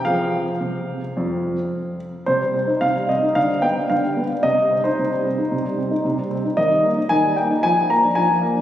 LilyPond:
<<
  \new Staff \with { instrumentName = "Grand piano" } { \time 4/4 \key f \minor \tempo 4 = 112 f''2.~ f''8 r8 | \key c \minor c''4 f''8 ees''8 f''8 g''8 f''4 | ees''8. c''2~ c''8. r8 | ees''4 aes''8 g''8 aes''8 bes''8 aes''4 | }
  \new Staff \with { instrumentName = "Grand piano" } { \clef bass \time 4/4 \key f \minor <f c' aes'>4 c4 f,4 r4 | \key c \minor c16 g16 c'16 ees'16 c16 g16 c'16 ees'16 d16 g16 b16 d'16 d16 g16 b16 d'16 | c16 g16 c'16 ees'16 c16 g16 c'16 ees'16 c16 g16 c'16 ees'16 c16 g16 c'16 ees'16 | ees16 g16 bes16 ees'16 ees16 g16 bes16 ees'16 f16 f16 bes16 d'16 f16 f16 bes16 d'16 | }
>>